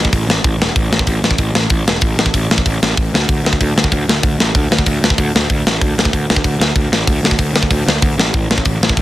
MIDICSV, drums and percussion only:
0, 0, Header, 1, 2, 480
1, 0, Start_track
1, 0, Tempo, 315956
1, 1142, Time_signature, 4, 2, 24, 8
1, 13700, End_track
2, 0, Start_track
2, 0, Title_t, "Drums"
2, 73, Note_on_c, 9, 36, 82
2, 195, Note_off_c, 9, 36, 0
2, 195, Note_on_c, 9, 36, 97
2, 205, Note_on_c, 9, 46, 57
2, 347, Note_off_c, 9, 36, 0
2, 357, Note_off_c, 9, 46, 0
2, 455, Note_on_c, 9, 38, 106
2, 607, Note_off_c, 9, 38, 0
2, 674, Note_on_c, 9, 36, 111
2, 677, Note_on_c, 9, 46, 55
2, 826, Note_off_c, 9, 36, 0
2, 829, Note_off_c, 9, 46, 0
2, 937, Note_on_c, 9, 38, 107
2, 1089, Note_off_c, 9, 38, 0
2, 1153, Note_on_c, 9, 36, 104
2, 1159, Note_on_c, 9, 46, 53
2, 1305, Note_off_c, 9, 36, 0
2, 1310, Note_off_c, 9, 46, 0
2, 1407, Note_on_c, 9, 38, 97
2, 1509, Note_on_c, 9, 36, 79
2, 1559, Note_off_c, 9, 38, 0
2, 1622, Note_on_c, 9, 46, 55
2, 1627, Note_off_c, 9, 36, 0
2, 1627, Note_on_c, 9, 36, 97
2, 1774, Note_off_c, 9, 46, 0
2, 1779, Note_off_c, 9, 36, 0
2, 1885, Note_on_c, 9, 38, 106
2, 1985, Note_on_c, 9, 36, 83
2, 2037, Note_off_c, 9, 38, 0
2, 2098, Note_on_c, 9, 46, 60
2, 2104, Note_off_c, 9, 36, 0
2, 2104, Note_on_c, 9, 36, 95
2, 2250, Note_off_c, 9, 46, 0
2, 2256, Note_off_c, 9, 36, 0
2, 2358, Note_on_c, 9, 38, 120
2, 2510, Note_off_c, 9, 38, 0
2, 2579, Note_on_c, 9, 46, 61
2, 2586, Note_on_c, 9, 36, 104
2, 2731, Note_off_c, 9, 46, 0
2, 2738, Note_off_c, 9, 36, 0
2, 2852, Note_on_c, 9, 38, 111
2, 3004, Note_off_c, 9, 38, 0
2, 3058, Note_on_c, 9, 46, 63
2, 3067, Note_on_c, 9, 36, 105
2, 3210, Note_off_c, 9, 46, 0
2, 3219, Note_off_c, 9, 36, 0
2, 3325, Note_on_c, 9, 38, 107
2, 3431, Note_on_c, 9, 36, 76
2, 3477, Note_off_c, 9, 38, 0
2, 3554, Note_off_c, 9, 36, 0
2, 3554, Note_on_c, 9, 36, 92
2, 3564, Note_on_c, 9, 46, 61
2, 3706, Note_off_c, 9, 36, 0
2, 3716, Note_off_c, 9, 46, 0
2, 3816, Note_on_c, 9, 38, 100
2, 3918, Note_on_c, 9, 36, 80
2, 3968, Note_off_c, 9, 38, 0
2, 4038, Note_off_c, 9, 36, 0
2, 4038, Note_on_c, 9, 36, 97
2, 4043, Note_on_c, 9, 46, 63
2, 4190, Note_off_c, 9, 36, 0
2, 4195, Note_off_c, 9, 46, 0
2, 4297, Note_on_c, 9, 38, 111
2, 4449, Note_off_c, 9, 38, 0
2, 4518, Note_on_c, 9, 36, 110
2, 4523, Note_on_c, 9, 46, 53
2, 4670, Note_off_c, 9, 36, 0
2, 4675, Note_off_c, 9, 46, 0
2, 4786, Note_on_c, 9, 38, 104
2, 4938, Note_off_c, 9, 38, 0
2, 4997, Note_on_c, 9, 36, 108
2, 4998, Note_on_c, 9, 46, 53
2, 5149, Note_off_c, 9, 36, 0
2, 5150, Note_off_c, 9, 46, 0
2, 5262, Note_on_c, 9, 38, 98
2, 5359, Note_on_c, 9, 36, 78
2, 5414, Note_off_c, 9, 38, 0
2, 5479, Note_off_c, 9, 36, 0
2, 5479, Note_on_c, 9, 36, 92
2, 5486, Note_on_c, 9, 46, 54
2, 5631, Note_off_c, 9, 36, 0
2, 5638, Note_off_c, 9, 46, 0
2, 5737, Note_on_c, 9, 38, 107
2, 5834, Note_on_c, 9, 36, 88
2, 5889, Note_off_c, 9, 38, 0
2, 5954, Note_off_c, 9, 36, 0
2, 5954, Note_on_c, 9, 36, 94
2, 5956, Note_on_c, 9, 46, 58
2, 6106, Note_off_c, 9, 36, 0
2, 6108, Note_off_c, 9, 46, 0
2, 6220, Note_on_c, 9, 38, 115
2, 6372, Note_off_c, 9, 38, 0
2, 6427, Note_on_c, 9, 46, 55
2, 6432, Note_on_c, 9, 36, 110
2, 6579, Note_off_c, 9, 46, 0
2, 6584, Note_off_c, 9, 36, 0
2, 6689, Note_on_c, 9, 38, 109
2, 6841, Note_off_c, 9, 38, 0
2, 6911, Note_on_c, 9, 36, 113
2, 6911, Note_on_c, 9, 46, 60
2, 7062, Note_off_c, 9, 36, 0
2, 7063, Note_off_c, 9, 46, 0
2, 7169, Note_on_c, 9, 38, 100
2, 7270, Note_on_c, 9, 36, 79
2, 7321, Note_off_c, 9, 38, 0
2, 7384, Note_on_c, 9, 46, 58
2, 7390, Note_off_c, 9, 36, 0
2, 7390, Note_on_c, 9, 36, 98
2, 7536, Note_off_c, 9, 46, 0
2, 7542, Note_off_c, 9, 36, 0
2, 7656, Note_on_c, 9, 38, 108
2, 7752, Note_on_c, 9, 36, 83
2, 7808, Note_off_c, 9, 38, 0
2, 7871, Note_on_c, 9, 46, 65
2, 7872, Note_off_c, 9, 36, 0
2, 7872, Note_on_c, 9, 36, 105
2, 8023, Note_off_c, 9, 46, 0
2, 8024, Note_off_c, 9, 36, 0
2, 8139, Note_on_c, 9, 38, 107
2, 8291, Note_off_c, 9, 38, 0
2, 8354, Note_on_c, 9, 36, 102
2, 8357, Note_on_c, 9, 46, 59
2, 8506, Note_off_c, 9, 36, 0
2, 8509, Note_off_c, 9, 46, 0
2, 8612, Note_on_c, 9, 38, 114
2, 8764, Note_off_c, 9, 38, 0
2, 8834, Note_on_c, 9, 36, 105
2, 8841, Note_on_c, 9, 46, 55
2, 8986, Note_off_c, 9, 36, 0
2, 8993, Note_off_c, 9, 46, 0
2, 9098, Note_on_c, 9, 38, 102
2, 9196, Note_on_c, 9, 36, 77
2, 9250, Note_off_c, 9, 38, 0
2, 9316, Note_off_c, 9, 36, 0
2, 9316, Note_on_c, 9, 36, 90
2, 9330, Note_on_c, 9, 46, 53
2, 9468, Note_off_c, 9, 36, 0
2, 9482, Note_off_c, 9, 46, 0
2, 9572, Note_on_c, 9, 38, 108
2, 9668, Note_on_c, 9, 36, 88
2, 9724, Note_off_c, 9, 38, 0
2, 9789, Note_off_c, 9, 36, 0
2, 9789, Note_on_c, 9, 36, 105
2, 9795, Note_on_c, 9, 46, 54
2, 9941, Note_off_c, 9, 36, 0
2, 9946, Note_off_c, 9, 46, 0
2, 10049, Note_on_c, 9, 38, 108
2, 10201, Note_off_c, 9, 38, 0
2, 10265, Note_on_c, 9, 36, 102
2, 10269, Note_on_c, 9, 46, 54
2, 10417, Note_off_c, 9, 36, 0
2, 10421, Note_off_c, 9, 46, 0
2, 10527, Note_on_c, 9, 38, 105
2, 10679, Note_off_c, 9, 38, 0
2, 10748, Note_on_c, 9, 36, 105
2, 10752, Note_on_c, 9, 46, 59
2, 10899, Note_off_c, 9, 36, 0
2, 10904, Note_off_c, 9, 46, 0
2, 11014, Note_on_c, 9, 38, 106
2, 11108, Note_on_c, 9, 36, 81
2, 11166, Note_off_c, 9, 38, 0
2, 11221, Note_on_c, 9, 46, 61
2, 11224, Note_off_c, 9, 36, 0
2, 11224, Note_on_c, 9, 36, 97
2, 11373, Note_off_c, 9, 46, 0
2, 11376, Note_off_c, 9, 36, 0
2, 11478, Note_on_c, 9, 38, 104
2, 11586, Note_on_c, 9, 36, 78
2, 11630, Note_off_c, 9, 38, 0
2, 11706, Note_on_c, 9, 46, 60
2, 11707, Note_off_c, 9, 36, 0
2, 11707, Note_on_c, 9, 36, 105
2, 11858, Note_off_c, 9, 46, 0
2, 11859, Note_off_c, 9, 36, 0
2, 11979, Note_on_c, 9, 38, 109
2, 12131, Note_off_c, 9, 38, 0
2, 12187, Note_on_c, 9, 46, 62
2, 12190, Note_on_c, 9, 36, 108
2, 12338, Note_off_c, 9, 46, 0
2, 12342, Note_off_c, 9, 36, 0
2, 12449, Note_on_c, 9, 38, 105
2, 12601, Note_off_c, 9, 38, 0
2, 12665, Note_on_c, 9, 46, 58
2, 12670, Note_on_c, 9, 36, 115
2, 12817, Note_off_c, 9, 46, 0
2, 12822, Note_off_c, 9, 36, 0
2, 12925, Note_on_c, 9, 38, 109
2, 13031, Note_on_c, 9, 36, 76
2, 13077, Note_off_c, 9, 38, 0
2, 13141, Note_on_c, 9, 46, 54
2, 13150, Note_off_c, 9, 36, 0
2, 13150, Note_on_c, 9, 36, 96
2, 13293, Note_off_c, 9, 46, 0
2, 13302, Note_off_c, 9, 36, 0
2, 13415, Note_on_c, 9, 38, 102
2, 13513, Note_on_c, 9, 36, 81
2, 13567, Note_off_c, 9, 38, 0
2, 13629, Note_off_c, 9, 36, 0
2, 13629, Note_on_c, 9, 36, 97
2, 13631, Note_on_c, 9, 46, 56
2, 13700, Note_off_c, 9, 36, 0
2, 13700, Note_off_c, 9, 46, 0
2, 13700, End_track
0, 0, End_of_file